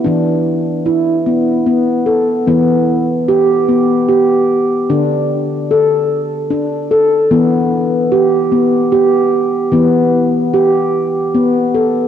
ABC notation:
X:1
M:3/4
L:1/8
Q:"Swing 16ths" 1/4=74
K:Em
V:1 name="Handpan"
D2 E B,2 A | B,2 G B, G2 | D2 A2 D A | B,2 G B, G2 |
B,2 G2 B, A |]
V:2 name="Handpan" clef=bass
E,4 B,2 | E, z4 z | D, z4 z | E, z4 z |
E, z4 z |]